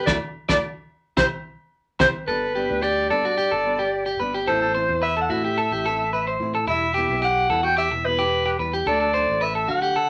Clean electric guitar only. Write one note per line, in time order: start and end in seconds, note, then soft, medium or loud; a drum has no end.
0.07 0.16 F#4 medium
0.07 0.16 A4 medium
0.07 0.16 D5 medium
0.49 0.58 F#4 medium
0.49 0.58 A4 medium
0.49 0.58 D5 medium
1.17 1.26 E4 medium
1.17 1.26 G4 medium
1.17 1.26 C5 medium
2.00 2.09 E4 medium
2.00 2.09 G4 medium
2.00 2.09 C5 medium
2.28 2.54 A4 medium
2.55 2.81 G4 medium
2.83 3.09 G4 medium
3.10 3.24 A4 medium
3.25 3.37 F#4 medium
3.38 3.51 G4 medium
3.51 3.78 A4 medium
3.79 4.05 G4 medium
4.06 4.19 G4 medium
4.20 4.33 B4 medium
4.34 4.47 G4 medium
4.47 4.60 A4 medium
4.62 4.74 A4 medium
4.75 5.01 C5 medium
5.02 5.16 B4 medium
5.17 5.29 A4 medium
5.30 5.44 F#4 medium
5.45 5.57 G4 medium
5.58 5.71 A4 medium
5.72 5.85 G4 medium
5.86 6.12 A4 medium
6.13 6.26 B4 medium
6.27 6.53 C5 medium
6.55 6.67 A4 medium
6.68 6.94 E4 medium
6.94 7.21 G4 medium
7.22 7.48 G4 medium
7.50 7.63 A4 medium
7.63 7.76 F#4 medium
7.77 7.91 G4 medium
7.92 muted clean electric guitar stroke medium
8.19 8.44 G4 medium
8.46 8.58 G4 medium
8.59 8.73 B4 medium
8.73 8.86 G4 medium
8.87 8.99 A4 medium
9.00 9.13 A4 medium
9.14 9.40 C5 medium
9.41 9.55 B4 medium
9.55 9.68 A4 medium
9.68 9.82 F#4 medium
9.82 9.95 G4 medium
9.96 10.09 A4 medium